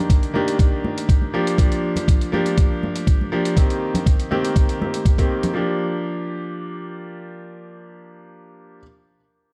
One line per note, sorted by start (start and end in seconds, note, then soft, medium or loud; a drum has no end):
0.00 0.31 D#3 medium
0.00 0.32 A#3 medium
0.00 0.32 D4 medium
0.00 0.32 G4 medium
0.10 kick loud
0.10 closed hi-hat medium
0.23 closed hi-hat soft
0.34 1.30 D#3 medium
0.34 1.31 A#3 medium
0.34 1.31 D4 medium
0.34 1.31 G4 loud
0.34 high conga medium
0.48 closed hi-hat soft
0.59 kick loud
0.59 closed hi-hat medium
0.84 high conga medium
0.98 closed hi-hat soft
1.09 kick loud
1.09 closed hi-hat medium
1.22 high conga medium
1.34 1.56 F3 medium
1.34 1.56 A#3 medium
1.34 1.56 D4 medium
1.34 1.56 G4 loud
1.47 closed hi-hat soft
1.58 2.30 F3 medium
1.58 2.30 A#3 medium
1.58 2.31 G4 medium
1.58 kick loud
1.58 closed hi-hat medium
1.72 closed hi-hat soft
1.96 closed hi-hat soft
1.96 low conga medium
2.08 kick loud
2.08 closed hi-hat medium
2.21 closed hi-hat soft
2.32 3.29 F3 medium
2.32 3.29 A#3 medium
2.32 3.29 D4 medium
2.32 3.30 G4 loud
2.32 high conga medium
2.46 closed hi-hat soft
2.58 kick loud
2.58 closed hi-hat medium
2.83 high conga medium
2.96 closed hi-hat soft
3.07 kick loud
3.07 closed hi-hat medium
3.21 high conga medium
3.32 3.54 F3 medium
3.32 3.54 A#3 medium
3.32 3.54 D4 medium
3.32 3.54 G4 loud
3.45 closed hi-hat soft
3.56 4.28 D#3 medium
3.56 4.28 A#3 medium
3.56 4.29 C4 medium
3.56 4.29 G4 medium
3.56 kick loud
3.56 closed hi-hat medium
3.70 closed hi-hat soft
3.94 closed hi-hat soft
3.94 low conga medium
4.06 kick loud
4.06 closed hi-hat medium
4.20 closed hi-hat soft
4.31 4.78 D#3 medium
4.31 4.78 A#3 medium
4.31 4.79 C4 medium
4.31 4.79 G4 loud
4.31 high conga medium
4.45 closed hi-hat soft
4.56 kick loud
4.56 closed hi-hat medium
4.69 closed hi-hat soft
4.80 5.15 D#3 medium
4.80 5.15 A#3 medium
4.80 5.16 C4 medium
4.80 5.16 G4 medium
4.80 high conga medium
4.94 closed hi-hat soft
5.05 kick loud
5.05 closed hi-hat medium
5.18 5.52 D#3 medium
5.18 5.52 A#3 medium
5.18 5.52 C4 medium
5.18 5.53 G4 medium
5.18 kick medium
5.18 closed hi-hat soft
5.18 high conga medium
5.43 closed hi-hat soft
5.43 low conga medium
5.54 8.79 F3 medium
5.54 8.80 A#3 medium
5.54 8.81 D4 medium
5.54 8.82 G4 medium